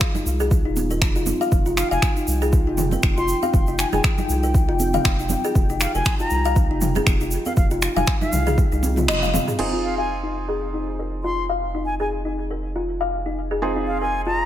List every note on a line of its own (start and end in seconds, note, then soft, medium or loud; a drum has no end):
0.00 9.55 D#4 medium
0.00 9.55 F4 medium
0.00 1.51 G#4 medium
0.00 finger snap loud
0.00 kick loud
0.00 shaker soft
0.15 0.25 D#4 medium
0.15 low conga medium
0.15 shaker soft
0.26 0.67 C2 medium
0.26 shaker medium
0.40 0.50 G#4 loud
0.40 shaker soft
0.51 kick loud
0.51 shaker medium
0.65 1.03 D#1 medium
0.65 0.71 D#4 medium
0.76 high conga medium
0.76 shaker medium
0.90 1.01 A#4 medium
0.90 high conga medium
0.90 shaker soft
1.02 1.33 F1 medium
1.02 finger snap loud
1.02 kick loud
1.02 shaker medium
1.16 1.26 F4 medium
1.16 shaker soft
1.26 high conga medium
1.26 low conga medium
1.26 shaker medium
1.41 1.47 F5 medium
1.41 shaker soft
1.52 1.83 F1 loud
1.52 9.58 G5 medium
1.52 kick loud
1.52 shaker medium
1.66 1.77 F4 loud
1.66 shaker soft
1.77 1.89 F5 medium
1.77 finger snap medium
1.77 shaker medium
1.91 1.98 F1 medium
1.91 1.97 F5 loud
1.91 2.11 G#5 medium
1.91 shaker soft
2.02 finger snap loud
2.02 kick loud
2.02 shaker medium
2.17 2.27 D#4 medium
2.17 shaker soft
2.27 2.69 C2 medium
2.27 shaker medium
2.42 2.52 G#4 loud
2.42 shaker soft
2.53 kick loud
2.53 shaker medium
2.67 2.97 F1 medium
2.67 2.73 D#4 medium
2.77 mid tom medium
2.77 low conga medium
2.77 shaker medium
2.91 3.02 A#4 medium
2.91 high conga medium
2.91 low conga medium
2.91 shaker soft
3.03 3.34 F1 medium
3.03 finger snap loud
3.03 kick loud
3.03 shaker soft
3.17 3.28 F4 loud
3.17 3.37 C6 medium
3.17 shaker soft
3.28 shaker medium
3.43 3.49 F5 loud
3.43 high conga medium
3.43 shaker soft
3.54 3.85 F1 loud
3.54 kick loud
3.54 shaker medium
3.67 3.78 D#4 medium
3.67 shaker soft
3.79 3.88 G#5 medium
3.79 finger snap medium
3.79 shaker medium
3.92 4.00 F1 medium
3.92 4.03 G#4 loud
3.92 4.00 G#5 medium
3.92 low conga medium
3.92 shaker soft
4.04 finger snap loud
4.04 kick loud
4.04 shaker soft
4.18 4.24 D#4 medium
4.18 low conga medium
4.18 shaker soft
4.29 4.70 C2 medium
4.29 shaker medium
4.43 4.53 A#4 medium
4.43 shaker soft
4.54 kick loud
4.54 shaker medium
4.68 4.98 F1 medium
4.68 4.79 F4 medium
4.80 high conga medium
4.80 shaker medium
4.93 5.00 F5 loud
4.93 mid tom medium
4.93 high conga medium
4.93 shaker soft
5.05 5.36 F1 medium
5.05 finger snap loud
5.05 kick loud
5.05 shaker soft
5.19 5.29 D#4 medium
5.19 shaker soft
5.29 high conga medium
5.29 low conga medium
5.29 shaker medium
5.44 5.54 G#4 loud
5.44 shaker soft
5.55 5.86 F1 medium
5.55 kick loud
5.55 shaker soft
5.70 5.76 D#4 medium
5.70 shaker soft
5.80 5.92 F5 medium
5.80 finger snap medium
5.80 shaker medium
5.95 6.02 F1 loud
5.95 6.05 A#4 medium
5.95 6.15 G#5 medium
5.95 shaker soft
6.05 finger snap loud
6.05 kick loud
6.05 shaker medium
6.19 6.31 F4 loud
6.19 6.56 A#5 medium
6.19 shaker soft
6.30 6.72 C2 medium
6.30 shaker medium
6.45 6.51 F5 loud
6.45 shaker soft
6.56 kick loud
6.56 shaker soft
6.70 7.00 F1 loud
6.70 6.81 D#4 medium
6.81 mid tom medium
6.81 low conga medium
6.81 shaker medium
6.95 7.06 G#4 loud
6.95 high conga medium
6.95 low conga medium
6.95 shaker soft
7.07 7.38 F1 medium
7.07 finger snap loud
7.07 kick loud
7.07 shaker medium
7.21 7.27 D#4 medium
7.21 shaker soft
7.31 shaker medium
7.45 7.56 A#4 medium
7.45 7.53 F5 medium
7.45 high conga medium
7.45 shaker soft
7.57 7.88 F1 loud
7.57 7.66 F5 medium
7.57 kick loud
7.57 shaker medium
7.71 7.82 F4 loud
7.71 shaker soft
7.82 finger snap medium
7.82 shaker medium
7.96 8.03 F1 loud
7.96 8.03 F5 loud
7.96 8.16 G#5 medium
7.96 low conga loud
7.96 shaker soft
8.07 finger snap loud
8.07 kick loud
8.07 shaker soft
8.21 8.32 D#4 medium
8.21 8.58 F5 loud
8.21 low conga medium
8.21 shaker soft
8.33 8.64 C2 medium
8.33 mid tom medium
8.33 shaker medium
8.47 8.57 G#4 loud
8.47 mid tom medium
8.47 shaker soft
8.58 kick loud
8.58 shaker soft
8.72 9.10 C2 medium
8.72 8.78 D#4 medium
8.72 shaker soft
8.83 high conga medium
8.83 shaker medium
8.96 9.07 F4 medium
8.96 mid tom medium
8.96 high conga medium
8.96 shaker soft
9.08 9.39 F1 medium
9.08 9.16 D#5 loud
9.08 finger snap loud
9.08 high tom medium
9.08 shaker medium
9.22 9.29 F5 medium
9.22 high tom medium
9.22 shaker soft
9.34 9.46 F5 medium
9.34 mid tom medium
9.34 high conga medium
9.34 low conga loud
9.34 shaker medium
9.48 9.58 G#4 medium
9.48 mid tom medium
9.48 shaker soft
9.59 14.46 F1 medium
9.59 13.60 C4 medium
9.59 13.60 D#4 medium
9.59 13.60 F4 medium
9.59 14.46 F4 medium
9.59 13.60 G#4 medium
9.59 14.46 C5 medium
9.59 14.46 D#5 medium
9.59 14.46 G#5 medium
9.59 crash medium
9.73 9.84 F4 medium
9.84 9.95 F5 medium
9.98 10.04 F5 medium
9.98 10.18 G#5 medium
10.23 10.33 D#4 medium
10.48 10.59 G#4 medium
10.74 10.80 D#4 medium
10.99 11.09 A#4 medium
11.24 11.35 F4 medium
11.24 11.44 C6 medium
11.49 11.55 F5 medium
11.75 11.85 D#4 medium
11.85 11.95 G#5 medium
12.00 12.10 G#4 medium
12.00 12.07 G#5 medium
12.25 12.31 D#4 medium
12.51 12.60 A#4 medium
12.76 12.86 F4 medium
13.01 13.07 F5 medium
13.26 13.36 D#4 medium
13.51 13.61 G#4 medium
13.62 14.46 C4 medium
13.62 14.46 D#4 medium
13.62 14.46 F4 medium
13.62 14.46 G#4 medium
13.76 13.82 D#4 medium
13.87 13.99 F5 medium
14.01 14.11 A#4 medium
14.01 14.21 G#5 medium
14.26 14.37 F4 medium
14.26 14.46 A#5 medium